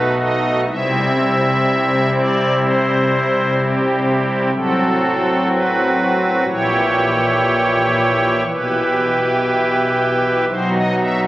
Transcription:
Already playing: B1 B2 A3 D#4 F#4 B4
0.18 D#5
0.68 C2 C3 G3 C4 E4 E5
2.14 D5
2.62 C5
3.56 G4
4.53 A1 A2 F#3 C4 F#4 A4
5.52 B4
6.47 A#1 A#2 E3 E4 G4 C#5
8.47 B1 B2 E3 E4 G4 B4
10.48 B1 B2 F#3 D#4 F#4 C5
10.74 D#5
10.99 E5

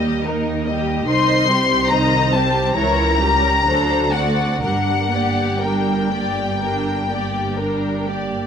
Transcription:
Already playing: D#2 G3 A#3 G4 D#5
0.25 A#3 D#4 A#4
0.67 G3 A#3 G4 D#5
1.07 C2 D#3 D#4 C5 D#5 C6
1.48 G3 C4 G4 C5
1.90 D#3 D#4 C5 D#5 A#5
2.33 G3 C4 G4 C5 A5
2.76 C#2 E3 E4 A#4 C#5 A#5
3.20 G3 C#4 G4 A#4
3.66 D2 F#3 D4 A4 C5
4.13 A3 C4 F#4 D5 F#5
4.62 G1 G2 G3 D4 A#4 F#5
5.12 A#3 G4 D5
5.61 G3 D4 A#4 G5
6.11 A#3 G4 D5
6.61 G3 D4 A#4
7.10 A#3 G4 D5
7.58 G3 D4 A#4
8.06 A#3 G4 D5

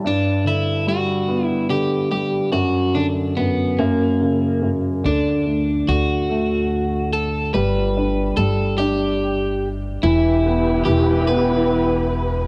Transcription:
0.04 G2 D4
0.45 D3 E4
0.87 G3 F#4
1.29 B3
1.46 E4
1.69 D3 G4
2.11 G3 G4
2.52 F#2 F#4
2.94 D3 D4
3.37 F#2 B3
3.79 F#2 A#3
4.21 C#3
4.62 F#2
5.04 D2 D3 D4
5.46 A3
5.88 D2 D3 F#4
6.30 A3
7.13 A4
7.54 G1 G3 B4
7.97 D4
8.37 G1 G3 A4
8.78 D4 G4
10.03 E1 E3 E4 G4 B4
10.46 B3
10.85 E1 E3 G4
11.27 B3 B4

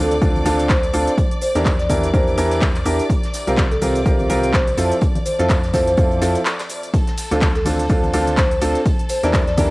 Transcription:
Already playing: D2 D3 C4 D4 F4 A4 D5 D6
0.11 closed hi-hat, tambourine, shaker
0.21 D2 D3 C4 D4 F4 A4, kick, closed hi-hat, tambourine, shaker
0.36 tambourine, high conga, shaker
0.45 D2 D3 C4 D4 F4 A4, closed hi-hat, open hi-hat, tambourine, high conga, shaker
0.59 closed hi-hat, tambourine, shaker
0.69 C5, kick, snare, clap, closed hi-hat, tambourine, shaker
0.83 closed hi-hat, tambourine, shaker
0.93 D2 C4 D4 F4 A4, closed hi-hat, open hi-hat, tambourine, shaker
1.07 closed hi-hat, tambourine, shaker
1.18 kick, closed hi-hat, tambourine, shaker
1.31 closed hi-hat, shaker
1.41 C5, closed hi-hat, open hi-hat, tambourine, shaker
1.55 E2 E3 D4 E4 G4 A#4 D5, snare, closed hi-hat, tambourine, shaker
1.65 kick, snare, clap, closed hi-hat, tambourine, shaker
1.79 D5, snare, closed hi-hat, shaker
1.90 E2 E3 D4 E4 G4 A#4 D5, kick, closed hi-hat, open hi-hat, tambourine, high conga, shaker
2.03 snare, closed hi-hat, tambourine, shaker
2.13 E2 E3 D4 E4 G4 A#4 C5, kick, closed hi-hat, tambourine, shaker
2.27 tambourine, shaker
2.38 E2 E3 D4 E4 G4 A#4, closed hi-hat, open hi-hat, tambourine, shaker
2.51 snare, closed hi-hat, tambourine, shaker
2.61 kick, snare, clap, closed hi-hat, tambourine, shaker
2.75 clap, closed hi-hat, tambourine, shaker
2.85 E2 D4 E4 G4 A#4, closed hi-hat, open hi-hat, tambourine, shaker
2.99 closed hi-hat, tambourine, shaker
3.10 kick, closed hi-hat, tambourine, shaker
3.23 snare, closed hi-hat, shaker
3.34 snare, closed hi-hat, open hi-hat, tambourine, shaker
3.47 C2 C3 C4 F4 G4 A#4, closed hi-hat, tambourine, shaker
3.57 kick, snare, clap, closed hi-hat, tambourine, shaker
3.71 A4, snare, closed hi-hat, shaker
3.81 C2 C3 C4 F4 G4 A#4, open hi-hat, tambourine, high conga, shaker
3.95 closed hi-hat, tambourine, shaker
4.06 C2 C3 C4 F4 G4 A#4, kick, closed hi-hat, tambourine, shaker
4.19 tambourine, high conga, shaker
4.29 C2 C3 C4 F4 G4 A#4, closed hi-hat, open hi-hat, tambourine, high conga, shaker
4.43 closed hi-hat, tambourine, shaker
4.54 C5, kick, snare, clap, closed hi-hat, tambourine, shaker
4.67 closed hi-hat, tambourine, shaker
4.77 F2 F3 C4 E4 F4 A4, closed hi-hat, open hi-hat, tambourine, shaker
4.91 closed hi-hat, tambourine, shaker
5.01 kick, closed hi-hat, tambourine, shaker
5.15 closed hi-hat, tambourine, high conga, shaker
5.26 C5, closed hi-hat, open hi-hat, tambourine, shaker
5.38 F2 F3 C4 E4 F4 A4, snare, closed hi-hat, tambourine, shaker
5.49 kick, snare, clap, closed hi-hat, tambourine, shaker
5.63 snare, closed hi-hat, tambourine, shaker
5.73 F2 F3 C4 E4 F4 A4 C5, kick, snare, closed hi-hat, open hi-hat, tambourine, high conga, shaker
5.87 C5, snare, closed hi-hat, tambourine, shaker
5.97 F2 F3 C4 E4 F4 A4, kick, closed hi-hat, tambourine, shaker
6.11 tambourine, shaker
6.21 F2 F3 C4 E4 F4 A4, snare, closed hi-hat, open hi-hat, tambourine, shaker
6.35 snare, closed hi-hat, tambourine, shaker
6.45 snare, clap, closed hi-hat, tambourine, shaker
6.59 snare, clap, closed hi-hat, tambourine, shaker
6.69 closed hi-hat, open hi-hat, tambourine, shaker
6.83 closed hi-hat, tambourine, shaker
6.93 A4 A5, kick, closed hi-hat, ride, tambourine, shaker
7.07 snare, closed hi-hat, shaker
7.17 snare, closed hi-hat, open hi-hat, ride, tambourine, shaker
7.31 D2 D3 C4 D4 F4 A4, closed hi-hat, tambourine, shaker
7.41 kick, snare, clap, closed hi-hat, ride, tambourine, shaker
7.55 A4, snare, closed hi-hat, shaker
7.65 D2 D3 C4 D4 F4 A4, open hi-hat, ride, tambourine, high conga, shaker
7.79 closed hi-hat, tambourine, shaker
7.89 D2 D3 C4 D4 F4 A4, kick, closed hi-hat, ride, tambourine, shaker
8.03 tambourine, high conga, shaker
8.14 D2 D3 C4 D4 F4 A4, closed hi-hat, open hi-hat, ride, tambourine, high conga, shaker
8.27 closed hi-hat, tambourine, shaker
8.37 C5, kick, snare, clap, closed hi-hat, ride, tambourine, shaker
8.51 closed hi-hat, tambourine, shaker
8.62 D2 C4 D4 F4 A4, closed hi-hat, open hi-hat, ride, tambourine, shaker
8.75 closed hi-hat, tambourine, shaker
8.86 kick, closed hi-hat, ride, tambourine, shaker
8.99 closed hi-hat, shaker
9.09 C5, closed hi-hat, open hi-hat, ride, tambourine, shaker
9.23 E2 E3 D4 E4 G4 A#4 D5, snare, closed hi-hat, tambourine, shaker
9.33 kick, snare, clap, closed hi-hat, ride, tambourine, shaker
9.47 D5, snare, closed hi-hat, shaker
9.57 E2 E3 D4 E4 G4 A#4 D5, kick, closed hi-hat, open hi-hat, ride, tambourine, high conga, shaker

